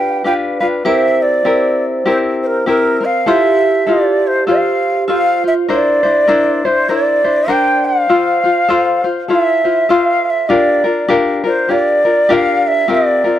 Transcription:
0.00 0.24 D4 medium
0.00 0.24 F4 medium
0.00 0.24 G4 medium
0.00 0.25 B4 medium
0.00 0.92 B4 loud
0.00 0.25 G5 medium
0.24 0.61 D4 medium
0.24 0.60 F4 medium
0.24 0.60 G4 medium
0.24 0.59 B4 medium
0.24 0.33 G5 medium
0.60 0.85 D4 soft
0.60 0.86 F4 soft
0.60 0.85 B4 medium
0.60 0.66 F5 medium
0.85 1.44 C4 medium
0.85 1.45 E4 medium
0.85 1.44 G4 medium
0.85 1.45 A#4 medium
0.85 3.34 C5 loud
0.85 1.23 E5 medium
1.22 1.84 D5 medium
1.45 2.06 C4 medium
1.45 2.06 E4 medium
1.45 2.04 G4 medium
1.45 2.05 A#4 medium
2.06 2.67 C4 medium
2.06 2.67 E4 medium
2.06 2.65 G4 medium
2.06 2.67 A#4 medium
2.06 2.17 C5 medium
2.43 2.65 A#4 medium
2.43 2.47 C5 medium
2.66 3.01 C4 medium
2.66 3.02 E4 medium
2.66 3.00 G4 medium
2.66 3.06 A#4 medium
2.66 2.99 A#4 medium
3.01 3.27 C4 soft
3.01 3.26 A#4 medium
3.01 3.29 F5 loud
3.26 3.87 E4 medium
3.26 3.87 F4 medium
3.26 5.14 G4 medium
3.26 3.85 A4 medium
3.26 3.88 C5 medium
3.26 3.88 E5 loud
3.87 4.46 E4 medium
3.87 4.47 F4 medium
3.87 4.46 A4 medium
3.87 4.49 C5 medium
3.87 4.28 D5 medium
4.27 4.47 C5 medium
4.47 5.08 F4 medium
4.47 5.07 A4 medium
4.47 5.10 C5 medium
4.47 5.04 F5 medium
5.08 5.64 F4 medium
5.08 5.43 F4 medium
5.08 5.43 A4 medium
5.08 5.43 C5 medium
5.08 5.42 F5 medium
5.44 5.69 F4 soft
5.44 5.68 C5 medium
5.44 5.53 E5 medium
5.68 6.04 D4 medium
5.68 6.03 E4 medium
5.68 6.03 A#4 medium
5.68 6.02 C5 medium
5.68 6.67 D5 loud
6.03 6.27 D4 soft
6.03 6.27 E4 soft
6.03 6.28 C5 medium
6.28 6.63 D4 medium
6.28 6.63 E4 medium
6.28 6.63 A#4 medium
6.28 6.64 C5 medium
6.65 6.89 D4 soft
6.65 6.89 E4 soft
6.65 6.89 C5 soft
6.65 6.90 C5 medium
6.89 7.24 D4 medium
6.89 7.24 E4 medium
6.89 7.24 A#4 medium
6.89 7.23 C5 medium
6.89 7.53 D5 medium
7.24 7.48 D4 soft
7.24 7.49 E4 soft
7.24 7.48 C5 soft
7.48 8.09 D4 medium
7.48 8.08 A#4 medium
7.48 8.10 C5 loud
7.48 7.86 G5 loud
7.85 9.08 F5 loud
8.09 8.44 F4 medium
8.09 8.44 A4 medium
8.09 8.42 C5 medium
8.44 8.69 F4 soft
8.44 8.69 C5 soft
8.69 9.04 F4 medium
8.69 9.04 A4 medium
8.69 9.03 C5 medium
9.04 9.29 F4 soft
9.04 9.29 C5 medium
9.28 9.64 E4 medium
9.28 9.64 F4 medium
9.28 9.64 A4 medium
9.28 9.63 C5 medium
9.28 9.92 E5 medium
9.64 9.89 E4 soft
9.64 9.89 F4 soft
9.64 9.89 C5 soft
9.89 10.49 F4 medium
9.89 10.49 A4 medium
9.89 10.48 C5 medium
9.89 10.25 F5 loud
10.25 10.31 F5 medium
10.30 10.50 E5 medium
10.49 10.85 D4 medium
10.49 10.84 F4 medium
10.49 10.84 G4 medium
10.49 10.83 A#4 medium
10.49 11.12 D5 medium
10.84 11.07 D4 soft
10.84 11.08 F4 soft
10.84 11.09 A#4 medium
11.08 11.44 D4 medium
11.08 11.44 F4 medium
11.08 11.44 G4 medium
11.08 11.43 A#4 medium
11.44 11.68 D4 soft
11.44 11.69 F4 soft
11.44 11.69 A#4 medium
11.44 11.72 C5 medium
11.69 12.04 D4 medium
11.69 12.04 F4 medium
11.69 12.04 G4 medium
11.69 12.04 A#4 medium
11.69 12.34 D5 medium
12.05 12.29 D4 soft
12.05 12.29 F4 soft
12.05 12.29 A#4 soft
12.29 12.88 D4 medium
12.29 12.88 F4 medium
12.29 12.87 G4 medium
12.29 12.89 A#4 loud
12.29 12.68 F5 loud
12.67 12.91 E5 medium
12.88 13.24 C4 medium
12.88 13.24 F4 medium
12.88 13.24 G4 medium
12.88 13.23 A#4 medium
12.92 13.39 D5 medium
13.24 13.39 C4 soft
13.24 13.39 F4 soft
13.24 13.39 A#4 soft

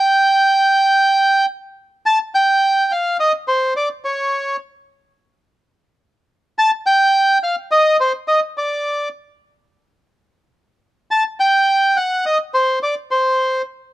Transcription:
0.00 1.46 G5 medium
2.06 2.18 A5 loud
2.35 2.92 G5 medium
2.92 3.17 F5 medium
3.20 3.32 D#5 medium
3.48 3.74 C5 medium
3.76 3.89 D5 medium
4.05 4.56 C#5 medium
6.58 6.71 A5 loud
6.87 7.38 G5 medium
7.43 7.56 F5 medium
7.71 7.97 D#5 medium
8.00 8.12 C5 medium
8.28 8.40 D#5 medium
8.58 9.09 D5 medium
11.11 11.23 A5 loud
11.40 11.97 G5 medium
11.97 12.25 F#5 medium
12.26 12.38 D#5 medium
12.54 12.79 C5 medium
12.83 12.95 D5 medium
13.11 13.62 C5 medium

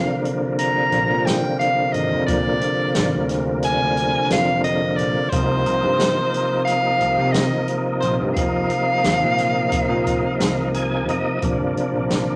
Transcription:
0.00 5.29 C3 medium
0.00 5.30 D3 medium
0.00 5.29 F3 medium
0.00 5.30 A#3 soft
0.00 0.20 F5 loud
0.25 closed hi-hat medium
0.59 1.27 A#5 loud
0.59 closed hi-hat medium
0.92 1.08 A#1 medium
0.92 closed hi-hat medium
1.10 1.42 A#2 medium
1.26 1.59 G5 medium
1.26 snare loud
1.26 closed hi-hat medium
1.59 1.94 F5 medium
1.59 closed hi-hat medium
1.93 2.10 G#1 medium
1.93 2.26 D#5 medium
1.93 closed hi-hat medium
2.12 2.28 F2 medium
2.27 2.60 A#2 medium
2.27 3.25 D5 medium
2.27 kick loud
2.27 closed hi-hat medium
2.61 closed hi-hat medium
2.95 3.12 G#1 medium
2.95 snare loud
2.95 closed hi-hat medium
3.14 3.77 D2 medium
3.29 snare soft
3.29 closed hi-hat medium
3.62 4.28 G#5 loud
3.62 closed hi-hat medium
3.82 4.13 D2 medium
3.97 closed hi-hat medium
4.30 5.01 F2 medium
4.30 4.63 F5 medium
4.30 snare loud
4.30 closed hi-hat medium
4.64 4.97 D#5 medium
4.64 closed hi-hat medium
4.96 5.15 A#1 medium
4.96 5.31 D5 medium
4.96 closed hi-hat medium
5.29 5.64 C2 medium
5.29 8.33 C3 medium
5.29 8.34 F3 medium
5.29 8.34 A#3 medium
5.29 6.64 C5 loud
5.29 kick loud
5.29 closed hi-hat medium
5.34 8.35 D#4 medium
5.66 5.83 C2 medium
5.66 closed hi-hat medium
5.83 6.15 G2 medium
5.99 snare loud
5.99 closed hi-hat medium
6.34 closed hi-hat medium
6.65 7.34 F5 loud
6.65 closed hi-hat medium
7.01 7.17 C2 medium
7.01 closed hi-hat medium
7.18 7.50 C3 medium
7.32 7.75 D#5 medium
7.32 snare loud
7.32 closed hi-hat medium
7.68 closed hi-hat medium
8.00 8.20 A#1 medium
8.00 8.16 C5 medium
8.00 closed hi-hat medium
8.21 8.36 G2 medium
8.34 8.69 F2 medium
8.34 11.39 C3 medium
8.34 11.39 F3 medium
8.34 10.69 F5 medium
8.34 kick loud
8.34 closed hi-hat medium
8.38 11.39 A#3 medium
8.38 11.39 D#4 medium
8.70 closed hi-hat medium
9.04 9.21 D#2 medium
9.04 snare loud
9.04 closed hi-hat medium
9.22 9.86 A#2 medium
9.38 snare soft
9.38 closed hi-hat medium
9.72 kick medium
9.72 closed hi-hat medium
9.89 10.22 A#2 medium
10.06 kick medium
10.06 closed hi-hat medium
10.40 11.08 C2 medium
10.40 snare loud
10.40 closed hi-hat medium
10.74 11.06 G#5 medium
10.74 closed hi-hat medium
11.08 11.25 F2 medium
11.08 11.41 D#5 medium
11.08 closed hi-hat medium
11.41 11.58 A#1 medium
11.41 12.36 C3 medium
11.41 12.36 F3 medium
11.41 12.36 A#3 medium
11.41 12.36 D4 medium
11.41 kick medium
11.41 closed hi-hat medium
11.59 11.75 G1 medium
11.77 closed hi-hat medium
11.93 12.26 A#1 medium
12.10 snare medium
12.10 closed hi-hat medium

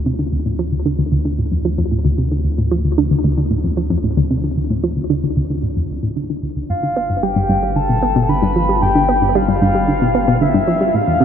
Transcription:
0.00 6.67 D2 medium
0.06 0.14 C3 medium
0.19 0.31 D3 medium
0.32 0.37 D2 medium
0.46 0.57 A2 medium
0.59 0.64 F3 medium
0.72 0.84 D2 medium
0.86 0.93 D3 medium
0.99 1.03 D2 loud
1.12 1.20 D2 medium
1.25 1.37 D3 medium
1.38 1.43 A2 medium
1.52 1.60 F2 medium
1.65 1.70 F3 medium
1.78 1.86 F2 loud
1.91 2.03 A2 medium
2.05 2.10 D2 loud
2.18 2.26 C3 medium
2.32 2.43 D3 medium
2.45 2.49 D2 medium
2.58 2.70 A2 medium
2.71 2.76 F3 loud
2.85 2.96 D2 medium
2.98 3.06 D3 loud
3.11 3.16 D2 loud
3.24 3.32 D2 loud
3.38 3.49 D3 medium
3.51 3.56 A2 medium
3.64 3.72 F2 medium
3.77 3.82 F3 medium
3.90 3.98 F2 medium
4.04 4.16 A2 medium
4.17 4.22 D2 loud
4.31 4.38 C3 medium
4.44 4.56 D3 medium
4.57 4.62 D2 medium
4.70 4.82 A2 medium
4.84 4.88 F3 loud
4.97 5.09 D2 medium
5.10 5.18 D3 loud
5.24 5.28 D2 loud
5.37 5.45 D2 medium
5.50 5.62 D3 medium
5.63 5.68 A2 medium
5.77 5.84 F2 medium
5.90 6.02 D2 medium
6.03 6.15 A2 medium
6.16 6.24 D3 medium
6.30 6.42 D3 medium
6.43 6.51 D2 medium
6.57 6.64 D2 medium
6.70 10.92 G1 medium
6.70 6.74 G2 medium
6.70 7.24 F5 loud
6.83 6.95 D3 medium
6.97 7.01 B3 loud
7.10 7.21 G2 medium
7.23 7.31 G3 loud
7.23 7.78 G5 loud
7.36 7.41 G2 loud
7.49 7.57 G2 loud
7.63 7.74 G3 medium
7.76 7.80 D3 medium
7.76 8.31 A5 loud
7.89 7.97 B2 medium
8.02 8.07 B3 medium
8.16 8.24 B2 loud
8.29 8.41 D3 medium
8.29 8.81 B5 loud
8.42 8.47 G2 loud
8.56 8.63 F3 medium
8.69 8.81 G3 medium
8.82 8.87 G2 medium
8.82 9.37 G5 loud
8.95 9.07 D3 medium
9.09 9.13 B3 loud
9.22 9.33 G2 medium
9.35 9.43 G3 loud
9.35 10.43 F5 loud
9.48 9.53 G2 loud
9.62 9.69 G2 loud
9.75 9.87 G3 medium
9.88 9.93 D3 medium
10.02 10.09 B2 medium
10.15 10.19 B3 medium
10.28 10.36 B2 loud
10.41 10.53 D3 medium
10.41 10.97 E5 loud
10.54 10.59 G2 loud
10.68 10.75 F3 medium
10.81 10.93 G3 medium
10.94 11.25 A1 medium
10.94 10.99 A2 medium
10.94 11.25 F5 loud
11.07 11.19 E2 medium
11.20 11.25 C3 loud

